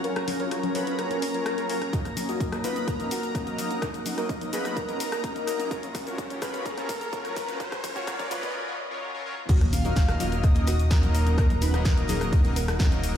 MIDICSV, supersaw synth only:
0, 0, Header, 1, 2, 480
1, 0, Start_track
1, 0, Key_signature, -6, "minor"
1, 0, Tempo, 472441
1, 43, Time_signature, 4, 2, 24, 8
1, 13381, End_track
2, 0, Start_track
2, 0, Title_t, "Supersaw synth"
2, 0, Program_c, 0, 81
2, 42, Note_on_c, 0, 54, 90
2, 42, Note_on_c, 0, 61, 84
2, 42, Note_on_c, 0, 65, 82
2, 42, Note_on_c, 0, 70, 77
2, 42, Note_on_c, 0, 73, 102
2, 130, Note_off_c, 0, 54, 0
2, 130, Note_off_c, 0, 61, 0
2, 130, Note_off_c, 0, 65, 0
2, 130, Note_off_c, 0, 70, 0
2, 130, Note_off_c, 0, 73, 0
2, 405, Note_on_c, 0, 54, 76
2, 405, Note_on_c, 0, 61, 68
2, 405, Note_on_c, 0, 65, 69
2, 405, Note_on_c, 0, 70, 67
2, 405, Note_on_c, 0, 73, 84
2, 735, Note_off_c, 0, 54, 0
2, 735, Note_off_c, 0, 61, 0
2, 735, Note_off_c, 0, 65, 0
2, 735, Note_off_c, 0, 70, 0
2, 735, Note_off_c, 0, 73, 0
2, 762, Note_on_c, 0, 54, 94
2, 762, Note_on_c, 0, 61, 84
2, 762, Note_on_c, 0, 65, 89
2, 762, Note_on_c, 0, 70, 90
2, 762, Note_on_c, 0, 73, 108
2, 1095, Note_off_c, 0, 54, 0
2, 1096, Note_off_c, 0, 61, 0
2, 1096, Note_off_c, 0, 65, 0
2, 1096, Note_off_c, 0, 70, 0
2, 1096, Note_off_c, 0, 73, 0
2, 1125, Note_on_c, 0, 54, 86
2, 1125, Note_on_c, 0, 70, 80
2, 1125, Note_on_c, 0, 73, 93
2, 1126, Note_on_c, 0, 61, 76
2, 1126, Note_on_c, 0, 65, 76
2, 1209, Note_off_c, 0, 54, 0
2, 1209, Note_off_c, 0, 61, 0
2, 1209, Note_off_c, 0, 70, 0
2, 1209, Note_off_c, 0, 73, 0
2, 1210, Note_off_c, 0, 65, 0
2, 1364, Note_on_c, 0, 54, 79
2, 1364, Note_on_c, 0, 65, 73
2, 1364, Note_on_c, 0, 70, 74
2, 1364, Note_on_c, 0, 73, 88
2, 1365, Note_on_c, 0, 61, 77
2, 1576, Note_off_c, 0, 54, 0
2, 1576, Note_off_c, 0, 61, 0
2, 1576, Note_off_c, 0, 65, 0
2, 1576, Note_off_c, 0, 70, 0
2, 1576, Note_off_c, 0, 73, 0
2, 1605, Note_on_c, 0, 61, 74
2, 1605, Note_on_c, 0, 65, 80
2, 1605, Note_on_c, 0, 70, 77
2, 1605, Note_on_c, 0, 73, 96
2, 1606, Note_on_c, 0, 54, 85
2, 1705, Note_off_c, 0, 61, 0
2, 1705, Note_off_c, 0, 65, 0
2, 1705, Note_off_c, 0, 70, 0
2, 1705, Note_off_c, 0, 73, 0
2, 1706, Note_off_c, 0, 54, 0
2, 1721, Note_on_c, 0, 61, 87
2, 1721, Note_on_c, 0, 70, 85
2, 1721, Note_on_c, 0, 73, 103
2, 1722, Note_on_c, 0, 54, 96
2, 1722, Note_on_c, 0, 65, 85
2, 1809, Note_off_c, 0, 61, 0
2, 1809, Note_off_c, 0, 65, 0
2, 1809, Note_off_c, 0, 70, 0
2, 1809, Note_off_c, 0, 73, 0
2, 1810, Note_off_c, 0, 54, 0
2, 1961, Note_on_c, 0, 63, 85
2, 1961, Note_on_c, 0, 75, 99
2, 1962, Note_on_c, 0, 54, 91
2, 1962, Note_on_c, 0, 58, 85
2, 1962, Note_on_c, 0, 70, 79
2, 2049, Note_off_c, 0, 63, 0
2, 2049, Note_off_c, 0, 75, 0
2, 2050, Note_off_c, 0, 54, 0
2, 2050, Note_off_c, 0, 58, 0
2, 2050, Note_off_c, 0, 70, 0
2, 2323, Note_on_c, 0, 70, 72
2, 2323, Note_on_c, 0, 75, 80
2, 2324, Note_on_c, 0, 54, 76
2, 2324, Note_on_c, 0, 58, 70
2, 2324, Note_on_c, 0, 63, 67
2, 2654, Note_off_c, 0, 54, 0
2, 2654, Note_off_c, 0, 58, 0
2, 2654, Note_off_c, 0, 63, 0
2, 2654, Note_off_c, 0, 70, 0
2, 2654, Note_off_c, 0, 75, 0
2, 2682, Note_on_c, 0, 54, 97
2, 2682, Note_on_c, 0, 58, 91
2, 2682, Note_on_c, 0, 63, 88
2, 2682, Note_on_c, 0, 70, 92
2, 2682, Note_on_c, 0, 75, 109
2, 3015, Note_off_c, 0, 54, 0
2, 3015, Note_off_c, 0, 58, 0
2, 3015, Note_off_c, 0, 63, 0
2, 3015, Note_off_c, 0, 70, 0
2, 3015, Note_off_c, 0, 75, 0
2, 3044, Note_on_c, 0, 54, 85
2, 3044, Note_on_c, 0, 58, 81
2, 3044, Note_on_c, 0, 63, 84
2, 3044, Note_on_c, 0, 70, 79
2, 3044, Note_on_c, 0, 75, 101
2, 3129, Note_off_c, 0, 54, 0
2, 3129, Note_off_c, 0, 58, 0
2, 3129, Note_off_c, 0, 63, 0
2, 3129, Note_off_c, 0, 70, 0
2, 3129, Note_off_c, 0, 75, 0
2, 3401, Note_on_c, 0, 58, 77
2, 3402, Note_on_c, 0, 54, 88
2, 3402, Note_on_c, 0, 63, 78
2, 3402, Note_on_c, 0, 70, 79
2, 3402, Note_on_c, 0, 75, 95
2, 3854, Note_off_c, 0, 54, 0
2, 3854, Note_off_c, 0, 58, 0
2, 3854, Note_off_c, 0, 63, 0
2, 3854, Note_off_c, 0, 70, 0
2, 3854, Note_off_c, 0, 75, 0
2, 3882, Note_on_c, 0, 54, 85
2, 3882, Note_on_c, 0, 58, 86
2, 3882, Note_on_c, 0, 63, 79
2, 3882, Note_on_c, 0, 70, 81
2, 3882, Note_on_c, 0, 75, 94
2, 3970, Note_off_c, 0, 54, 0
2, 3970, Note_off_c, 0, 58, 0
2, 3970, Note_off_c, 0, 63, 0
2, 3970, Note_off_c, 0, 70, 0
2, 3970, Note_off_c, 0, 75, 0
2, 4244, Note_on_c, 0, 54, 71
2, 4244, Note_on_c, 0, 58, 69
2, 4244, Note_on_c, 0, 63, 66
2, 4244, Note_on_c, 0, 70, 72
2, 4244, Note_on_c, 0, 75, 86
2, 4574, Note_off_c, 0, 54, 0
2, 4574, Note_off_c, 0, 58, 0
2, 4574, Note_off_c, 0, 63, 0
2, 4574, Note_off_c, 0, 70, 0
2, 4574, Note_off_c, 0, 75, 0
2, 4600, Note_on_c, 0, 54, 103
2, 4601, Note_on_c, 0, 58, 92
2, 4601, Note_on_c, 0, 63, 88
2, 4601, Note_on_c, 0, 70, 92
2, 4601, Note_on_c, 0, 75, 107
2, 4935, Note_off_c, 0, 54, 0
2, 4935, Note_off_c, 0, 58, 0
2, 4935, Note_off_c, 0, 63, 0
2, 4935, Note_off_c, 0, 70, 0
2, 4935, Note_off_c, 0, 75, 0
2, 4964, Note_on_c, 0, 54, 85
2, 4964, Note_on_c, 0, 58, 80
2, 4964, Note_on_c, 0, 63, 80
2, 4964, Note_on_c, 0, 70, 75
2, 4964, Note_on_c, 0, 75, 97
2, 5049, Note_off_c, 0, 54, 0
2, 5049, Note_off_c, 0, 58, 0
2, 5049, Note_off_c, 0, 63, 0
2, 5049, Note_off_c, 0, 70, 0
2, 5049, Note_off_c, 0, 75, 0
2, 5320, Note_on_c, 0, 54, 86
2, 5320, Note_on_c, 0, 63, 80
2, 5321, Note_on_c, 0, 58, 78
2, 5321, Note_on_c, 0, 70, 80
2, 5321, Note_on_c, 0, 75, 95
2, 5774, Note_off_c, 0, 54, 0
2, 5774, Note_off_c, 0, 58, 0
2, 5774, Note_off_c, 0, 63, 0
2, 5774, Note_off_c, 0, 70, 0
2, 5774, Note_off_c, 0, 75, 0
2, 5801, Note_on_c, 0, 54, 87
2, 5801, Note_on_c, 0, 61, 85
2, 5801, Note_on_c, 0, 70, 89
2, 5801, Note_on_c, 0, 73, 103
2, 5802, Note_on_c, 0, 65, 85
2, 5889, Note_off_c, 0, 54, 0
2, 5889, Note_off_c, 0, 61, 0
2, 5889, Note_off_c, 0, 70, 0
2, 5889, Note_off_c, 0, 73, 0
2, 5890, Note_off_c, 0, 65, 0
2, 6164, Note_on_c, 0, 54, 77
2, 6164, Note_on_c, 0, 61, 68
2, 6164, Note_on_c, 0, 65, 68
2, 6165, Note_on_c, 0, 70, 70
2, 6165, Note_on_c, 0, 73, 80
2, 6494, Note_off_c, 0, 54, 0
2, 6494, Note_off_c, 0, 61, 0
2, 6494, Note_off_c, 0, 65, 0
2, 6494, Note_off_c, 0, 73, 0
2, 6495, Note_off_c, 0, 70, 0
2, 6522, Note_on_c, 0, 54, 104
2, 6522, Note_on_c, 0, 61, 92
2, 6522, Note_on_c, 0, 65, 92
2, 6522, Note_on_c, 0, 70, 90
2, 6522, Note_on_c, 0, 73, 105
2, 6855, Note_off_c, 0, 54, 0
2, 6856, Note_off_c, 0, 61, 0
2, 6856, Note_off_c, 0, 65, 0
2, 6856, Note_off_c, 0, 70, 0
2, 6856, Note_off_c, 0, 73, 0
2, 6885, Note_on_c, 0, 54, 87
2, 6885, Note_on_c, 0, 61, 81
2, 6885, Note_on_c, 0, 65, 80
2, 6885, Note_on_c, 0, 70, 81
2, 6885, Note_on_c, 0, 73, 96
2, 6969, Note_off_c, 0, 54, 0
2, 6969, Note_off_c, 0, 61, 0
2, 6969, Note_off_c, 0, 65, 0
2, 6969, Note_off_c, 0, 70, 0
2, 6969, Note_off_c, 0, 73, 0
2, 7243, Note_on_c, 0, 54, 87
2, 7243, Note_on_c, 0, 61, 79
2, 7243, Note_on_c, 0, 65, 80
2, 7243, Note_on_c, 0, 70, 81
2, 7243, Note_on_c, 0, 73, 101
2, 7695, Note_off_c, 0, 54, 0
2, 7695, Note_off_c, 0, 61, 0
2, 7695, Note_off_c, 0, 65, 0
2, 7695, Note_off_c, 0, 70, 0
2, 7695, Note_off_c, 0, 73, 0
2, 7723, Note_on_c, 0, 54, 91
2, 7723, Note_on_c, 0, 61, 81
2, 7723, Note_on_c, 0, 65, 87
2, 7723, Note_on_c, 0, 70, 86
2, 7723, Note_on_c, 0, 73, 106
2, 7810, Note_off_c, 0, 54, 0
2, 7810, Note_off_c, 0, 61, 0
2, 7810, Note_off_c, 0, 65, 0
2, 7810, Note_off_c, 0, 70, 0
2, 7810, Note_off_c, 0, 73, 0
2, 8086, Note_on_c, 0, 54, 77
2, 8086, Note_on_c, 0, 61, 70
2, 8086, Note_on_c, 0, 65, 74
2, 8086, Note_on_c, 0, 70, 69
2, 8086, Note_on_c, 0, 73, 86
2, 8415, Note_off_c, 0, 54, 0
2, 8415, Note_off_c, 0, 61, 0
2, 8415, Note_off_c, 0, 65, 0
2, 8415, Note_off_c, 0, 70, 0
2, 8415, Note_off_c, 0, 73, 0
2, 8444, Note_on_c, 0, 54, 100
2, 8444, Note_on_c, 0, 61, 95
2, 8444, Note_on_c, 0, 70, 89
2, 8444, Note_on_c, 0, 73, 106
2, 8445, Note_on_c, 0, 65, 90
2, 8777, Note_off_c, 0, 54, 0
2, 8777, Note_off_c, 0, 61, 0
2, 8777, Note_off_c, 0, 65, 0
2, 8777, Note_off_c, 0, 70, 0
2, 8777, Note_off_c, 0, 73, 0
2, 8806, Note_on_c, 0, 54, 89
2, 8806, Note_on_c, 0, 65, 79
2, 8806, Note_on_c, 0, 70, 81
2, 8806, Note_on_c, 0, 73, 93
2, 8807, Note_on_c, 0, 61, 84
2, 8890, Note_off_c, 0, 54, 0
2, 8890, Note_off_c, 0, 61, 0
2, 8890, Note_off_c, 0, 65, 0
2, 8890, Note_off_c, 0, 70, 0
2, 8890, Note_off_c, 0, 73, 0
2, 9048, Note_on_c, 0, 54, 80
2, 9048, Note_on_c, 0, 61, 75
2, 9048, Note_on_c, 0, 65, 76
2, 9048, Note_on_c, 0, 70, 74
2, 9048, Note_on_c, 0, 73, 93
2, 9257, Note_off_c, 0, 54, 0
2, 9257, Note_off_c, 0, 61, 0
2, 9257, Note_off_c, 0, 65, 0
2, 9257, Note_off_c, 0, 70, 0
2, 9257, Note_off_c, 0, 73, 0
2, 9286, Note_on_c, 0, 54, 86
2, 9287, Note_on_c, 0, 61, 76
2, 9287, Note_on_c, 0, 65, 80
2, 9287, Note_on_c, 0, 70, 77
2, 9287, Note_on_c, 0, 73, 98
2, 9386, Note_off_c, 0, 54, 0
2, 9386, Note_off_c, 0, 61, 0
2, 9386, Note_off_c, 0, 65, 0
2, 9386, Note_off_c, 0, 70, 0
2, 9386, Note_off_c, 0, 73, 0
2, 9405, Note_on_c, 0, 61, 95
2, 9405, Note_on_c, 0, 65, 85
2, 9405, Note_on_c, 0, 70, 88
2, 9406, Note_on_c, 0, 54, 101
2, 9406, Note_on_c, 0, 73, 108
2, 9491, Note_off_c, 0, 61, 0
2, 9491, Note_off_c, 0, 65, 0
2, 9491, Note_off_c, 0, 70, 0
2, 9491, Note_off_c, 0, 73, 0
2, 9492, Note_off_c, 0, 54, 0
2, 9645, Note_on_c, 0, 54, 90
2, 9645, Note_on_c, 0, 58, 82
2, 9645, Note_on_c, 0, 63, 83
2, 9645, Note_on_c, 0, 70, 81
2, 9645, Note_on_c, 0, 75, 102
2, 9731, Note_off_c, 0, 58, 0
2, 9731, Note_off_c, 0, 63, 0
2, 9731, Note_off_c, 0, 70, 0
2, 9732, Note_off_c, 0, 54, 0
2, 9732, Note_off_c, 0, 75, 0
2, 10007, Note_on_c, 0, 54, 78
2, 10007, Note_on_c, 0, 58, 68
2, 10007, Note_on_c, 0, 63, 70
2, 10007, Note_on_c, 0, 70, 72
2, 10007, Note_on_c, 0, 75, 84
2, 10335, Note_off_c, 0, 63, 0
2, 10336, Note_off_c, 0, 54, 0
2, 10336, Note_off_c, 0, 58, 0
2, 10336, Note_off_c, 0, 70, 0
2, 10336, Note_off_c, 0, 75, 0
2, 10364, Note_on_c, 0, 58, 86
2, 10365, Note_on_c, 0, 54, 103
2, 10365, Note_on_c, 0, 63, 92
2, 10365, Note_on_c, 0, 70, 92
2, 10365, Note_on_c, 0, 75, 107
2, 10697, Note_off_c, 0, 54, 0
2, 10697, Note_off_c, 0, 58, 0
2, 10697, Note_off_c, 0, 63, 0
2, 10697, Note_off_c, 0, 70, 0
2, 10697, Note_off_c, 0, 75, 0
2, 10726, Note_on_c, 0, 58, 80
2, 10726, Note_on_c, 0, 70, 80
2, 10727, Note_on_c, 0, 54, 86
2, 10727, Note_on_c, 0, 63, 84
2, 10727, Note_on_c, 0, 75, 91
2, 10810, Note_off_c, 0, 54, 0
2, 10810, Note_off_c, 0, 58, 0
2, 10810, Note_off_c, 0, 63, 0
2, 10810, Note_off_c, 0, 70, 0
2, 10810, Note_off_c, 0, 75, 0
2, 11084, Note_on_c, 0, 54, 91
2, 11084, Note_on_c, 0, 58, 76
2, 11084, Note_on_c, 0, 63, 80
2, 11084, Note_on_c, 0, 70, 78
2, 11084, Note_on_c, 0, 75, 95
2, 11535, Note_off_c, 0, 54, 0
2, 11535, Note_off_c, 0, 58, 0
2, 11535, Note_off_c, 0, 63, 0
2, 11535, Note_off_c, 0, 70, 0
2, 11535, Note_off_c, 0, 75, 0
2, 11563, Note_on_c, 0, 54, 93
2, 11564, Note_on_c, 0, 58, 80
2, 11564, Note_on_c, 0, 63, 87
2, 11564, Note_on_c, 0, 70, 86
2, 11564, Note_on_c, 0, 75, 99
2, 11650, Note_off_c, 0, 54, 0
2, 11651, Note_off_c, 0, 58, 0
2, 11651, Note_off_c, 0, 63, 0
2, 11651, Note_off_c, 0, 70, 0
2, 11651, Note_off_c, 0, 75, 0
2, 11927, Note_on_c, 0, 54, 77
2, 11927, Note_on_c, 0, 58, 72
2, 11927, Note_on_c, 0, 63, 68
2, 11927, Note_on_c, 0, 70, 69
2, 11927, Note_on_c, 0, 75, 84
2, 12255, Note_off_c, 0, 54, 0
2, 12255, Note_off_c, 0, 70, 0
2, 12256, Note_off_c, 0, 58, 0
2, 12256, Note_off_c, 0, 63, 0
2, 12256, Note_off_c, 0, 75, 0
2, 12284, Note_on_c, 0, 54, 101
2, 12284, Note_on_c, 0, 58, 91
2, 12284, Note_on_c, 0, 63, 90
2, 12284, Note_on_c, 0, 70, 94
2, 12284, Note_on_c, 0, 75, 110
2, 12616, Note_off_c, 0, 54, 0
2, 12616, Note_off_c, 0, 58, 0
2, 12616, Note_off_c, 0, 63, 0
2, 12616, Note_off_c, 0, 70, 0
2, 12616, Note_off_c, 0, 75, 0
2, 12646, Note_on_c, 0, 54, 90
2, 12646, Note_on_c, 0, 63, 81
2, 12646, Note_on_c, 0, 70, 78
2, 12647, Note_on_c, 0, 58, 82
2, 12647, Note_on_c, 0, 75, 97
2, 12730, Note_off_c, 0, 54, 0
2, 12730, Note_off_c, 0, 58, 0
2, 12730, Note_off_c, 0, 63, 0
2, 12730, Note_off_c, 0, 70, 0
2, 12730, Note_off_c, 0, 75, 0
2, 13004, Note_on_c, 0, 54, 84
2, 13004, Note_on_c, 0, 58, 84
2, 13004, Note_on_c, 0, 63, 77
2, 13004, Note_on_c, 0, 70, 76
2, 13004, Note_on_c, 0, 75, 96
2, 13381, Note_off_c, 0, 54, 0
2, 13381, Note_off_c, 0, 58, 0
2, 13381, Note_off_c, 0, 63, 0
2, 13381, Note_off_c, 0, 70, 0
2, 13381, Note_off_c, 0, 75, 0
2, 13381, End_track
0, 0, End_of_file